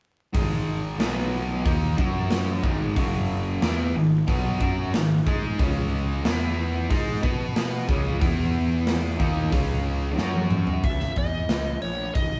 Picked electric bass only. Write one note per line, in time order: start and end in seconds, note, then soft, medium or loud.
0.34 0.96 G#1 medium
0.99 1.61 B1 medium
1.65 1.96 D#2 medium
1.98 2.60 F#2 medium
2.64 2.94 G#1 medium
2.96 3.58 F#1 loud
3.62 3.92 E2 loud
3.94 4.25 G#1 medium
4.28 4.58 B1 medium
4.60 4.91 F#2 medium
4.94 5.24 G#1 medium
5.26 5.57 G#2 loud
5.59 6.20 C#2 loud
6.25 6.86 E2 loud
6.90 7.20 G#2 medium
7.23 7.84 B2 loud
7.88 8.19 C#2 medium
8.21 9.15 E2 loud
9.20 9.50 D#2 medium
9.53 10.14 C#2 loud
10.18 10.79 F#2 medium
10.84 11.09 C#2 medium
11.16 11.42 E2 medium
11.48 11.75 C#2 medium
11.82 12.08 A#1 medium
12.15 12.40 G#1 medium